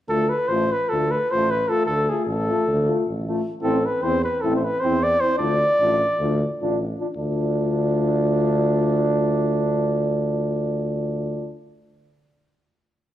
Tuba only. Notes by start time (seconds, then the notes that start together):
0.09 D2
0.49 A1
0.92 D2
1.33 A1
1.87 D2
2.26 A1
2.67 D2
3.07 A1
3.64 A1
4.03 E2
4.44 A1
4.84 E2
5.39 D2
5.79 A1
6.19 D2
6.62 A1
7.17 D2